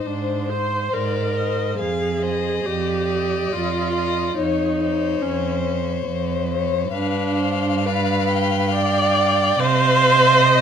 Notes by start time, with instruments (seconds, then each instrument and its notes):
Already playing: violin C5
0.05 cello G#2, viola D4, violin C5
0.50 viola C5, violin C5
0.93 cello G#2, viola A#4, violin D5
1.36 violin C5 D#5
1.79 cello F2, viola G#4, violin F5
2.22 violin C5 D#5
2.65 cello F2, viola G4, violin D5
3.09 violin D#5
3.51 cello F2, viola F4
3.95 violin D#5
4.37 cello F2, viola D#4, violin C#5
4.80 violin C5 C#5
5.22 cello F2, viola C#4
5.65 violin C#5
6.08 cello F2
6.50 violin C#5
6.92 cello G2, viola D4, violin B4 F5
7.38 violin C5
7.86 viola B4, violin D5
8.32 violin G5
8.74 viola D5
9.59 cello C3, viola C5, violin D#5 F5
10.46 violin D#5